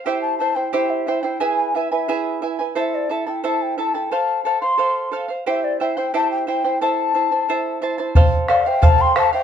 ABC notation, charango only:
X:1
M:2/4
L:1/16
Q:1/4=89
K:Am
V:1 name="Charango"
[EGceg]2 [Eceg] [Ecg] [EGceg]2 [Eceg] [Ecg] | [E^GBe^g]2 [EBeg] [EBg] [EGBeg]2 [EBeg] [EBg] | [EAcea]2 [EAea] [EAa] [EAcea]2 [EAea] [EAa] | [Acf]2 [Acf] [cf] [Acf]2 [Acf] [cf] |
[EGceg]2 [Eceg] [Ecg] [EGceg]2 [Eceg] [Ecg] | [EAcea]2 [Ecea] [Eca] [EAcea]2 [Ecea] [Eca] | [Acf]2 [Acf] [cf] [Acf]2 [Acf] [cf] |]